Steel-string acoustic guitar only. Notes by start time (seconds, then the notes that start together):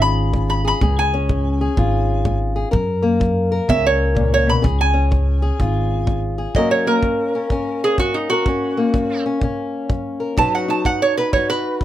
Already playing: G#2 C#4 F4 G#4
0.33 G#3
0.65 G#4
0.82 C#3 G#4
1.14 C#4
1.30 G#3
1.61 G#4
1.77 G#2 F4
2.25 G#3
2.56 G#4
2.71 F#2 A#4
3.02 A#3
3.20 F#3
3.52 A#4
3.68 C#3 C#4
4.15 A#2
4.46 B2
4.62 C#3 G#4
4.94 C#4
5.11 G#3
5.42 G#4
5.59 G#2 F4
6.07 G#3
6.38 G#4
6.55 F#2 F#3 A#3 C#4 A#4
6.87 A#3
7.04 F#3
7.35 C#4
7.51 C#3 C#4
7.99 F#3
8.32 A#4
8.47 F#2 C#4
8.77 A#3
8.94 F#3
9.26 C#4
9.42 C#3 C#4
9.89 F#3
10.20 A#4
10.37 B2 F#3 D#4 F#4 B4
10.68 D#4
10.86 F#3
11.19 B4
11.36 F#3 F#4